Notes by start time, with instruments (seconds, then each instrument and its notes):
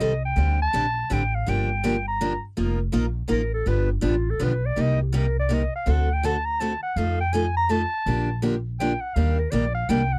Already playing: clarinet D#5
0.00 upright bass C2, steel-string acoustic guitar D#3 G3 C4 G4 A4
0.25 clarinet G5
0.36 upright bass D2, steel-string acoustic guitar D3 G3 C4 D4 G4
0.62 clarinet A5
0.73 upright bass A#1, steel-string acoustic guitar D3 G3 C4 D4 G4
1.10 upright bass A1, steel-string acoustic guitar D3 G3 C4 D4 G4, clarinet G5
1.35 clarinet F5
1.46 upright bass G1, steel-string acoustic guitar D3 F3 A#3 D4 G4, clarinet G5
1.84 steel-string acoustic guitar D3 F3 A#3 D4 G4
2.08 clarinet A#5
2.21 steel-string acoustic guitar D3 F3 A#3 D4 G4
2.57 upright bass F1, steel-string acoustic guitar F3 A#3 D#4 F4 A#4
2.92 upright bass A#1, steel-string acoustic guitar F3 A#3 D#4 F4 A#4
3.28 upright bass A1, steel-string acoustic guitar F3 A#3 D#4 F4 A#4, clarinet A#4
3.54 clarinet A4
3.66 upright bass G1, steel-string acoustic guitar D3 F3 B3 D4 G4, clarinet B4
3.93 clarinet D4
4.01 upright bass A1, steel-string acoustic guitar D3 F3 B3 D4 G4
4.07 clarinet F4
4.30 clarinet A4
4.39 upright bass B1, steel-string acoustic guitar D3 F3 B3 D4 G4
4.43 clarinet B4
4.66 clarinet D5
4.76 upright bass C2, steel-string acoustic guitar C3 G3 A#3 D#4 G4
4.80 clarinet D#5
5.02 clarinet G4
5.12 steel-string acoustic guitar C3 G3 A#3 D#4 G4, clarinet A#4
5.40 clarinet D5
5.49 steel-string acoustic guitar C3 G3 A#3 D#4 G4
5.54 clarinet D#5
5.76 clarinet F5
5.86 upright bass D2, steel-string acoustic guitar D3 A3 C4 F#4 A4
5.91 clarinet F#5
6.14 clarinet G5
6.23 steel-string acoustic guitar D3 A3 C4 F#4 A4, clarinet A5
6.45 clarinet A#5
6.60 steel-string acoustic guitar D3 A3 C4 F#4 A4, clarinet A5
6.83 clarinet F#5
6.96 upright bass F2, steel-string acoustic guitar F3 A3 D#4 A4, clarinet F5
7.20 clarinet G5
7.33 steel-string acoustic guitar F3 A3 D#4 A4, clarinet G#5
7.57 clarinet A#5
7.69 steel-string acoustic guitar F3 A3 D#4 A4, clarinet A5
8.06 upright bass A#1, steel-string acoustic guitar D3 F3 A#3 D4 G4
8.42 steel-string acoustic guitar D3 F3 A#3 D4 G4
8.80 steel-string acoustic guitar D3 F3 A#3 D4 G4, clarinet G5
9.01 clarinet F#5
9.14 upright bass D#2, steel-string acoustic guitar D#3 G3 A#3 D4 G4, clarinet F5
9.39 clarinet A#4
9.51 upright bass A#1, steel-string acoustic guitar D#3 G3 A#3 D4 G4, clarinet D5
9.75 clarinet F5
9.89 upright bass C2, steel-string acoustic guitar D#3 G3 A#3 D4 G4, clarinet G5
10.13 clarinet F#5